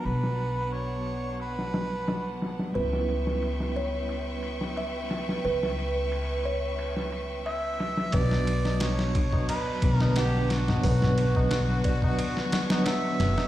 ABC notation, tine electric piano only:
X:1
M:4/4
L:1/16
Q:1/4=89
K:Bm
V:1 name="Tine electric piano"
[F,B,DF]16 | [G,B,CE]16- | [G,B,CE]16 | [F,B,DF]8- [F,B,DF]2 [F,B,DB] [D,B,DB]4- [D,B,DB] |
[F,B,DB]8- [F,B,DB]2 z [F,B,DB]4- [F,B,DB] |]